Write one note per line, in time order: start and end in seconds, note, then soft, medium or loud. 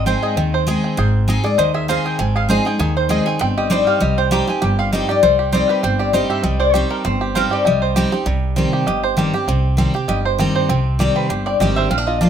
0.00 0.14 G#1 medium
0.00 0.34 G#2 medium
0.00 0.37 C4 medium
0.00 0.23 G#4 medium
0.06 0.35 G#3 medium
0.06 0.36 C4 medium
0.06 0.36 D#4 medium
0.06 0.36 G#4 medium
0.06 0.54 C5 medium
0.06 0.22 G5 medium
0.23 0.67 G#4 medium
0.23 0.64 D#5 medium
0.36 0.75 D#2 medium
0.36 0.95 D#3 medium
0.36 0.84 C4 medium
0.54 1.58 C5 medium
0.67 0.96 G#3 medium
0.67 0.96 C4 loud
0.67 0.97 D#4 loud
0.67 0.98 G#4 medium
0.67 0.97 G#4 loud
0.84 2.19 C4 medium
0.97 1.36 G#1 medium
0.97 1.56 G#2 medium
0.97 1.28 G#4 medium
0.97 1.41 C5 medium
1.28 1.44 G#3 medium
1.28 1.44 C4 medium
1.28 1.45 D#4 medium
1.28 1.43 G#4 medium
1.28 1.42 G#4 loud
1.44 1.59 D#4 medium
1.44 1.58 G#4 medium
1.44 1.73 G#4 medium
1.44 1.57 D5 loud
1.58 1.97 D#2 medium
1.58 2.17 D#3 loud
1.58 1.88 C5 medium
1.58 1.74 D#5 medium
1.74 2.04 G#4 medium
1.74 1.88 E5 medium
1.88 2.18 G#3 medium
1.88 2.18 C4 loud
1.88 2.18 D#4 loud
1.88 2.19 G#4 loud
1.88 2.49 C5 medium
1.88 2.05 F5 loud
2.05 2.34 G#4 medium
2.05 2.19 G5 loud
2.19 2.57 G#1 medium
2.19 2.77 G#2 medium
2.19 3.27 C4 medium
2.19 2.36 G#5 loud
2.36 2.65 G#4 medium
2.36 2.50 F5 medium
2.49 2.65 G#3 medium
2.49 2.65 C4 loud
2.49 2.66 D#4 loud
2.49 2.64 G#4 loud
2.49 2.96 C5 medium
2.49 2.66 D#5 medium
2.65 2.80 D#4 soft
2.65 2.79 G#4 medium
2.65 2.79 G5 medium
2.79 3.18 D#2 medium
2.79 3.38 D#3 loud
2.79 3.09 G#4 medium
2.79 2.96 G#5 loud
2.97 3.71 C5 medium
2.97 3.10 C5 medium
3.09 3.25 G#3 medium
3.09 3.26 C4 loud
3.09 3.26 D#4 loud
3.09 3.41 G#4 medium
3.09 3.25 G#4 loud
3.09 3.26 D#5 medium
3.26 3.41 C4 medium
3.26 3.41 D#4 soft
3.26 3.40 G#4 medium
3.26 3.40 G#5 loud
3.39 3.79 G1 loud
3.39 3.98 G2 medium
3.39 4.48 C4 medium
3.39 3.57 G5 loud
3.57 3.87 G4 medium
3.57 3.70 D#5 loud
3.70 3.99 G3 medium
3.70 4.00 C4 loud
3.70 4.00 D#4 medium
3.70 4.01 G4 loud
3.70 4.17 C5 medium
3.70 3.87 D5 medium
3.87 4.02 G4 medium
3.87 4.01 F5 loud
4.00 4.40 C2 medium
4.00 4.30 G3 medium
4.00 4.32 G4 medium
4.00 4.18 D#5 medium
4.18 5.22 C5 medium
4.18 4.31 G5 loud
4.31 4.47 G3 loud
4.31 4.48 C4 medium
4.31 4.48 D#4 loud
4.31 4.61 G4 medium
4.31 4.46 G4 loud
4.31 4.48 A#5 loud
4.47 4.78 C4 medium
4.47 4.62 D#4 soft
4.47 4.61 G4 medium
4.47 4.62 G#5 medium
4.62 5.01 G1 medium
4.62 5.20 G2 medium
4.62 4.92 G4 medium
4.62 4.79 G5 medium
4.79 5.83 C4 medium
4.79 4.92 F5 loud
4.92 5.08 G3 medium
4.92 5.09 C4 medium
4.92 5.09 D#4 medium
4.92 5.09 G4 medium
4.92 5.08 G4 loud
4.92 5.09 D#5 medium
5.09 5.23 D#4 medium
5.09 5.39 G4 medium
5.09 5.22 G4 medium
5.09 5.38 D5 loud
5.23 5.61 C2 medium
5.23 5.51 G3 loud
5.23 5.52 C5 medium
5.39 5.69 G4 medium
5.52 5.82 G3 medium
5.52 5.82 C4 medium
5.52 5.83 D#4 loud
5.52 5.83 G4 loud
5.52 6.13 C5 medium
5.52 5.70 D5 medium
5.69 5.99 G4 medium
5.69 5.83 B4 medium
5.83 6.22 G1 medium
5.83 6.42 G2 medium
5.83 6.43 C4 medium
5.83 6.00 C5 medium
5.99 6.29 G4 medium
5.99 6.13 D5 loud
6.13 6.43 G3 medium
6.13 6.43 C4 loud
6.13 6.43 D#4 loud
6.13 6.44 G4 loud
6.13 6.59 C5 medium
6.13 6.30 D#5 medium
6.30 6.73 G4 medium
6.30 6.44 E5 loud
6.43 6.82 C2 medium
6.43 6.73 G3 loud
6.43 6.90 C4 medium
6.43 6.60 D#5 medium
6.60 7.35 C5 medium
6.60 6.74 D5 loud
6.74 7.03 G3 medium
6.74 7.04 C4 medium
6.74 7.04 D#4 loud
6.74 7.18 G4 medium
6.74 7.04 G4 loud
6.74 6.90 C5 medium
6.90 7.04 C4 medium
6.90 7.04 A#4 loud
7.05 7.43 G1 loud
7.05 7.63 G2 medium
7.05 7.48 C4 medium
7.05 7.36 C5 medium
7.21 7.50 G4 medium
7.35 7.64 G3 loud
7.35 7.65 C4 loud
7.35 7.65 D#4 loud
7.35 7.65 G4 loud
7.35 7.79 C5 medium
7.35 7.51 F5 loud
7.51 7.64 G4 medium
7.51 7.66 D5 loud
7.65 8.04 C2 medium
7.65 7.95 G3 medium
7.65 7.95 G4 medium
7.65 8.09 D#5 medium
7.82 8.23 C5 medium
7.96 8.12 G3 loud
7.96 8.12 C4 loud
7.96 8.12 D#4 loud
7.96 8.26 G4 medium
7.96 8.11 G4 loud
8.12 8.26 C4 medium
8.12 8.26 D#4 medium
8.12 8.25 G4 medium
8.26 8.64 C2 medium
8.26 8.84 C3 medium
8.26 9.66 G3 medium
8.56 8.85 D#3 medium
8.56 8.86 G3 medium
8.56 9.47 C4 medium
8.56 8.86 C4 loud
8.56 8.86 G4 medium
8.56 8.85 C5 medium
8.73 8.87 G4 medium
8.87 9.25 G1 medium
8.87 9.45 G2 medium
8.87 9.17 G4 medium
8.87 9.03 D#5 medium
9.04 10.25 C5 medium
9.17 9.33 D#3 medium
9.17 9.33 G3 medium
9.17 9.34 C4 medium
9.17 9.34 G4 medium
9.17 9.32 G4 loud
9.34 9.48 C4 medium
9.34 9.47 G4 medium
9.34 9.95 G4 medium
9.47 9.86 C2 loud
9.47 10.06 C3 medium
9.47 9.77 C4 medium
9.77 9.93 D#3 medium
9.77 9.94 G3 loud
9.77 10.22 C4 medium
9.77 9.94 C4 medium
9.77 9.93 G4 medium
9.77 10.06 C5 medium
9.94 10.09 C4 soft
9.94 10.07 G4 medium
9.94 10.08 G4 medium
10.08 10.46 G1 medium
10.08 10.66 G2 medium
10.08 10.52 G4 medium
10.08 10.18 D#5 medium
10.25 10.54 C5 medium
10.39 10.68 D#3 medium
10.39 10.68 G3 medium
10.39 10.68 C4 medium
10.39 10.68 C4 loud
10.39 10.69 G4 loud
10.55 10.97 C5 medium
10.69 11.07 C2 loud
10.69 11.27 C3 medium
10.69 11.13 C4 medium
10.99 11.28 D#3 medium
10.99 11.29 G3 medium
10.99 11.29 C4 loud
10.99 11.28 G4 medium
10.99 11.29 G4 loud
10.99 11.16 D5 medium
11.16 11.45 C4 medium
11.16 11.30 B4 medium
11.29 11.55 G1 medium
11.29 11.88 G2 medium
11.29 11.60 G4 medium
11.29 11.46 C5 medium
11.46 11.88 C4 medium
11.46 11.60 D5 medium
11.60 11.86 G#1 medium
11.60 11.89 D#3 medium
11.60 11.90 G3 loud
11.60 11.90 C4 medium
11.60 11.91 G4 medium
11.60 11.90 G4 loud
11.60 11.76 D#5 medium
11.76 11.91 C5 medium
11.76 11.90 E5 loud
11.90 12.29 A#1 medium
11.90 12.29 A#2 medium
11.90 11.98 C4 medium
11.90 12.06 F5 medium
11.98 12.20 D4 medium
12.07 12.29 F4 medium
12.07 12.21 D#5 medium
12.21 12.29 F3 medium
12.21 12.29 A#3 medium
12.21 12.29 D4 medium
12.21 12.29 F4 loud
12.21 12.29 D5 medium